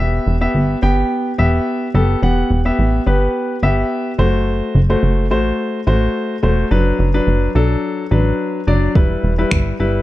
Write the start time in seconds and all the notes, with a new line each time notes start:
Already playing: B3
0.00 E1 G4 E5
0.27 E1
0.41 B3 G4 E5
0.55 G1
0.82 G1 B3 G4 G5
1.38 E1 B3 G4 E5
1.94 F#1 B3 G4 A4
2.22 E1 B3 G4 F#5
2.51 E1
2.65 B3 G4 E5
2.79 A1
3.06 G1 B3 G4 B4
3.63 G1 B3 G4 E5
4.18 F#1 A3 F#4 C5
4.75 F#1
4.90 A3 F#4 C5
5.03 F#1
5.31 A1 A3 F#4 C5
5.87 A1 A3 F#4 C5
6.43 E1 A3 F#4 C5
6.71 F#1 F#3 D4 B4
6.99 F#1
7.14 F#3 D4 B4
7.27 F#1
7.55 B1 F#3 D4 A4
8.11 A1 F#3 D4 B4
8.67 F#1 F#3 D4 D5
8.95 E1 G3 E4 B4, kick
9.23 E1
9.38 G3 E4 B4
9.51 G1, finger snap, kick
9.80 G1 G3 E4 B4